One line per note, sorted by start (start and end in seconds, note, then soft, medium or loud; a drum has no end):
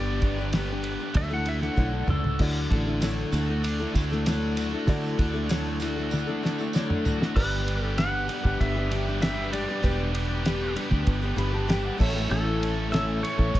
0.00 0.97 G1 loud
0.00 0.22 G3 medium
0.00 0.20 B3 medium
0.00 0.21 D4 medium
0.00 0.22 G4 medium
0.00 0.23 B4 medium
0.00 1.14 B4 medium
0.00 0.52 D5 loud
0.00 1.14 G5 medium
0.00 1.14 D6 medium
0.21 0.37 B3 medium
0.21 0.38 D4 medium
0.21 0.38 G4 medium
0.21 0.36 B4 medium
0.21 kick medium
0.21 ride medium
0.38 0.54 D4 soft
0.38 0.54 G4 soft
0.38 0.53 B4 medium
0.53 0.69 G3 medium
0.53 0.69 B3 medium
0.53 0.70 D4 medium
0.53 0.70 G4 medium
0.53 0.69 B4 medium
0.53 snare loud
0.53 ride medium
0.70 1.02 D4 medium
0.70 1.00 G4 medium
0.70 0.99 B4 medium
0.84 ride medium
1.00 1.15 D4 soft
1.00 1.16 G4 medium
1.00 1.16 B4 medium
1.14 1.68 D2 medium
1.14 1.31 D3 medium
1.14 1.31 F#3 medium
1.14 1.31 A3 medium
1.14 1.31 D4 medium
1.14 1.30 E4 medium
1.14 2.38 F#4 loud
1.14 1.29 A4 medium
1.14 2.36 D5 medium
1.14 1.31 E5 loud
1.14 2.36 F#5 medium
1.14 2.36 E6 medium
1.14 kick loud
1.14 ride loud
1.30 1.44 A3 medium
1.30 1.45 D4 medium
1.30 1.46 E4 medium
1.30 1.46 A4 medium
1.30 1.47 F#5 medium
1.45 1.61 A3 medium
1.45 1.62 D4 medium
1.45 1.61 E4 medium
1.45 1.60 A4 medium
1.45 1.63 E5 medium
1.45 ride medium
1.61 1.76 A3 soft
1.61 1.76 D4 soft
1.61 1.77 E4 medium
1.61 1.77 A4 medium
1.61 2.08 F#5 medium
1.61 snare soft
1.77 2.05 B1 medium
1.77 1.93 D3 medium
1.77 1.93 F#3 medium
1.77 1.93 A3 medium
1.77 1.93 D4 medium
1.77 1.93 E4 medium
1.77 1.92 A4 medium
1.77 kick medium
1.93 2.07 A3 soft
1.93 2.08 D4 soft
1.93 2.09 E4 soft
1.93 2.08 A4 soft
2.07 2.36 C#2 medium
2.07 2.39 A3 medium
2.07 2.39 D4 medium
2.07 2.39 E4 medium
2.07 2.40 A4 loud
2.07 2.40 A4 medium
2.07 mid tom medium
2.24 floor tom medium
2.37 2.66 D2 loud
2.37 2.70 D3 medium
2.37 2.71 F#3 medium
2.37 2.69 A3 medium
2.37 2.70 D4 medium
2.37 4.84 E4 medium
2.37 2.71 E4 medium
2.37 4.84 F#4 medium
2.37 2.71 A4 medium
2.37 7.30 D5 medium
2.37 4.84 D5 medium
2.37 7.30 F#5 medium
2.37 7.30 E6 medium
2.37 kick loud
2.37 crash loud
2.37 tambourine soft
2.56 tambourine soft
2.70 3.23 A1 medium
2.70 2.86 A3 medium
2.70 2.87 D4 medium
2.70 2.86 E4 medium
2.70 2.85 A4 medium
2.70 kick medium
2.70 ride medium
2.86 3.01 A3 soft
2.86 3.01 D4 soft
2.86 3.02 E4 medium
2.86 3.02 A4 medium
3.01 3.32 D3 medium
3.01 3.33 F#3 medium
3.01 3.30 A3 medium
3.01 3.31 D4 medium
3.01 3.32 E4 medium
3.01 3.33 A4 medium
3.01 snare loud
3.01 ride medium
3.01 tambourine medium
3.18 tambourine soft
3.31 3.85 D2 medium
3.31 3.48 A3 medium
3.31 3.48 D4 medium
3.31 3.49 E4 medium
3.31 4.56 F#4 medium
3.31 3.47 A4 medium
3.31 ride medium
3.31 tambourine medium
3.49 3.81 A3 soft
3.49 3.80 D4 medium
3.49 3.80 E4 medium
3.49 3.78 A4 medium
3.63 4.24 D4 medium
3.63 ride loud
3.63 tambourine medium
3.79 3.94 A3 medium
3.79 3.95 D4 medium
3.79 3.96 E4 medium
3.79 3.95 A4 medium
3.94 4.74 D2 medium
3.94 4.11 A3 medium
3.94 4.11 D4 medium
3.94 4.11 E4 medium
3.94 4.10 A4 medium
3.94 kick medium
3.94 ride medium
3.94 tambourine medium
4.10 4.26 A3 medium
4.10 4.26 D4 medium
4.10 4.27 E4 medium
4.10 4.26 A4 medium
4.10 snare soft
4.10 tambourine soft
4.26 4.72 D3 medium
4.26 4.73 F#3 medium
4.26 4.73 A3 loud
4.26 4.73 D4 medium
4.26 4.72 E4 loud
4.26 4.71 A4 loud
4.26 snare loud
4.26 ride loud
4.26 tambourine medium
4.57 5.79 F#4 medium
4.57 ride medium
4.57 tambourine medium
4.72 4.87 A3 soft
4.72 4.87 D4 medium
4.72 4.88 E4 medium
4.72 4.88 A4 medium
4.87 5.14 D3 loud
4.87 5.19 D3 medium
4.87 5.19 F#3 medium
4.87 5.17 A3 medium
4.87 5.18 D4 medium
4.87 7.32 E4 medium
4.87 5.19 E4 loud
4.87 7.32 F#4 medium
4.87 5.19 A4 loud
4.87 7.32 D5 medium
4.87 kick loud
4.87 ride loud
4.87 tambourine soft
5.04 tambourine soft
5.18 6.24 D2 medium
5.18 5.34 A3 medium
5.18 5.34 D4 medium
5.18 5.33 E4 medium
5.18 5.32 A4 medium
5.18 kick medium
5.18 ride medium
5.33 5.48 A3 medium
5.33 5.49 D4 medium
5.33 5.49 E4 medium
5.33 5.49 A4 medium
5.49 5.80 D3 medium
5.49 5.80 F#3 medium
5.49 5.79 A3 medium
5.49 5.80 D4 medium
5.49 5.81 E4 medium
5.49 5.81 A4 medium
5.49 snare loud
5.49 ride medium
5.49 tambourine medium
5.65 tambourine soft
5.80 5.96 A3 medium
5.80 5.96 D4 medium
5.80 5.96 E4 medium
5.80 7.04 F#4 medium
5.80 5.95 A4 medium
5.80 ride medium
5.80 tambourine medium
5.96 6.28 A3 medium
5.96 6.28 D4 medium
5.96 6.27 E4 medium
5.96 6.25 A4 medium
6.11 6.73 D4 medium
6.11 high tom medium
6.11 tambourine medium
6.27 6.42 A3 medium
6.27 6.43 D4 medium
6.27 6.43 E4 medium
6.27 6.42 A4 medium
6.43 6.58 A3 medium
6.43 6.59 D4 medium
6.43 6.59 E4 medium
6.43 6.57 A4 medium
6.43 snare medium
6.58 6.74 A3 medium
6.58 6.75 D4 medium
6.58 6.75 E4 medium
6.58 6.74 A4 medium
6.58 tambourine soft
6.73 7.21 D3 medium
6.73 7.21 F#3 loud
6.73 7.21 A3 loud
6.73 7.21 D4 medium
6.73 7.20 E4 medium
6.73 7.19 A4 loud
6.73 snare medium
6.73 tambourine medium
6.90 mid tom medium
7.05 7.36 F#4 medium
7.05 floor tom loud
7.05 tambourine medium
7.20 7.35 A3 soft
7.20 7.35 D4 soft
7.20 7.36 E4 soft
7.20 7.36 A4 medium
7.20 snare medium
7.35 8.28 G1 loud
7.35 7.96 G3 medium
7.35 7.67 B3 loud
7.35 7.97 D4 medium
7.35 9.79 G4 medium
7.35 7.98 G4 medium
7.35 11.97 G4 medium
7.35 7.85 B4 medium
7.35 9.79 B4 medium
7.35 11.96 B4 medium
7.35 7.98 B4 medium
7.35 9.80 D5 medium
7.35 11.97 D6 medium
7.35 kick loud
7.35 crash loud
7.66 7.97 G3 medium
7.66 7.85 B3 medium
7.66 7.84 D4 medium
7.66 7.83 G4 medium
7.66 ride medium
7.83 7.98 B3 medium
7.83 7.99 D4 medium
7.83 8.00 G4 medium
7.83 7.99 A4 medium
7.97 8.27 G3 medium
7.97 8.27 B3 medium
7.97 8.28 D4 medium
7.97 8.28 G4 medium
7.97 8.29 B4 medium
7.97 8.62 F#5 loud
7.97 snare loud
7.97 ride loud
8.28 8.44 G3 medium
8.28 8.45 B3 medium
8.28 8.44 D4 medium
8.28 8.44 G4 medium
8.28 8.42 B4 medium
8.28 ride medium
8.43 8.57 G1 loud
8.43 8.89 B3 medium
8.43 8.76 D4 soft
8.43 8.75 G4 medium
8.43 8.74 B4 medium
8.43 kick medium
8.60 9.65 G1 loud
8.60 9.21 E5 loud
8.60 kick loud
8.60 ride loud
8.75 8.91 D4 soft
8.75 8.91 G4 medium
8.75 8.90 B4 medium
8.91 9.06 G3 medium
8.91 9.06 B3 medium
8.91 9.07 D4 medium
8.91 9.06 G4 medium
8.91 9.05 B4 medium
8.91 ride medium
9.06 9.20 B3 medium
9.06 9.21 D4 soft
9.06 9.21 G4 soft
9.06 9.21 B4 soft
9.21 9.51 G3 medium
9.21 9.37 B3 loud
9.21 9.52 D4 medium
9.21 9.53 G4 medium
9.21 9.53 B4 medium
9.21 9.52 E5 loud
9.21 snare loud
9.21 ride loud
9.35 9.51 B3 medium
9.35 9.52 D4 medium
9.35 9.53 G4 medium
9.52 9.68 G3 medium
9.52 9.68 B3 medium
9.52 9.68 D4 medium
9.52 9.68 G4 medium
9.52 9.67 B4 medium
9.52 10.72 D5 medium
9.52 ride medium
9.68 9.82 B3 medium
9.68 9.82 D4 soft
9.68 9.82 G4 medium
9.68 9.83 B4 medium
9.83 10.75 E1 loud
9.83 10.44 G3 medium
9.83 10.12 B3 medium
9.83 10.44 D4 medium
9.83 11.96 G4 medium
9.83 10.45 G4 medium
9.83 11.96 B4 medium
9.83 10.45 B4 medium
9.83 11.96 D5 medium
9.83 kick loud
9.83 ride loud
10.12 10.41 G3 medium
10.12 10.29 B3 medium
10.12 10.28 D4 medium
10.12 10.26 G4 medium
10.12 ride medium
10.27 10.42 B3 medium
10.27 10.43 D4 medium
10.27 10.44 G4 medium
10.44 10.74 G3 medium
10.44 10.73 B3 loud
10.44 10.75 D4 medium
10.44 10.76 G4 medium
10.44 10.77 B4 medium
10.44 snare loud
10.44 ride loud
10.74 10.91 G3 medium
10.74 10.91 B3 medium
10.74 10.92 D4 medium
10.74 10.91 G4 medium
10.74 10.89 B4 medium
10.74 ride medium
10.91 11.04 D2 medium
10.91 11.36 B3 medium
10.91 11.23 D4 medium
10.91 11.22 G4 medium
10.91 11.20 B4 medium
10.91 kick medium
11.07 11.33 G1 loud
11.07 kick loud
11.07 ride loud
11.21 11.36 D4 medium
11.21 11.37 G4 medium
11.21 11.37 B4 medium
11.36 11.89 G1 medium
11.36 11.52 G3 medium
11.36 11.54 B3 medium
11.36 11.53 D4 medium
11.36 11.53 G4 medium
11.36 11.51 B4 medium
11.36 11.53 B5 medium
11.36 ride medium
11.52 11.68 B3 medium
11.52 11.67 D4 soft
11.52 11.68 G4 medium
11.52 11.68 B4 medium
11.52 11.68 A5 medium
11.67 11.97 G3 medium
11.67 11.85 B3 loud
11.67 11.99 D4 medium
11.67 11.99 G4 medium
11.67 12.00 B4 loud
11.67 11.83 G5 medium
11.67 snare loud
11.67 ride loud
11.83 11.99 B3 medium
11.83 11.98 D4 medium
11.83 11.97 G4 medium
11.83 11.99 F#5 medium
11.98 12.26 A1 loud
11.98 12.29 A2 loud
11.98 12.29 E3 medium
11.98 12.14 A3 medium
11.98 12.15 C#4 medium
11.98 12.14 E4 medium
11.98 13.60 E4 medium
11.98 13.60 A4 medium
11.98 12.13 A4 medium
11.98 13.60 A4 medium
11.98 13.60 C#5 medium
11.98 13.60 E5 medium
11.98 12.29 E5 medium
11.98 13.60 C#6 medium
11.98 kick loud
11.98 crash loud
12.14 12.29 A3 soft
12.14 12.29 C#4 soft
12.14 12.30 E4 medium
12.14 12.30 A4 medium
12.29 13.22 A1 loud
12.29 12.90 A2 medium
12.29 12.91 E3 medium
12.29 12.91 A3 medium
12.29 12.91 C#4 medium
12.29 12.92 E4 medium
12.29 12.92 A4 medium
12.29 12.89 A4 medium
12.60 12.91 E3 medium
12.60 12.78 A3 medium
12.60 12.77 C#4 medium
12.60 12.75 A4 medium
12.60 ride medium
12.75 12.92 A3 medium
12.75 12.92 C#4 medium
12.75 12.93 A4 medium
12.92 13.23 A2 medium
12.92 13.23 E3 medium
12.92 13.21 A3 medium
12.92 13.22 C#4 medium
12.92 13.23 E4 medium
12.92 13.24 A4 medium
12.92 13.24 E5 loud
12.92 snare loud
12.92 ride medium
13.22 13.60 E3 medium
13.22 13.38 A3 medium
13.22 13.38 C#4 medium
13.22 13.38 E4 medium
13.22 13.36 A4 medium
13.22 13.60 C#5 loud
13.22 ride medium
13.37 13.52 A1 loud
13.37 13.60 A3 soft
13.37 13.60 C#4 soft
13.37 13.60 E4 medium
13.37 13.60 A4 medium
13.37 kick medium
13.54 13.60 A1 loud
13.54 kick medium
13.54 ride loud